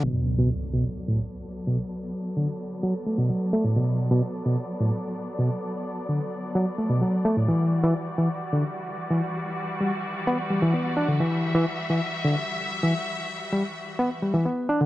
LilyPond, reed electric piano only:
\new Staff \with { instrumentName = "Reed electric piano" } { \clef bass \time 4/4 \key b \minor \tempo 4 = 129 b,8. b,16 r8 b,16 r8 a,16 r4 b,16 r16 | r4 d16 r8. fis16 r16 a16 b,16 fis8 a16 a,16 | b,8. b,16 r8 b,16 r8 a,16 r4 b,16 r16 | r4 d16 r8. fis16 r16 a16 b,16 fis8 a16 a,16 |
e8. e16 r8 e16 r8 d16 r4 e16 r16 | r4 g16 r8. b16 r16 g16 e16 b8 d'16 d16 | e8. e16 r8 e16 r8 d16 r4 e16 r16 | r4 g16 r8. b16 r16 g16 e16 b8 d'16 d16 | }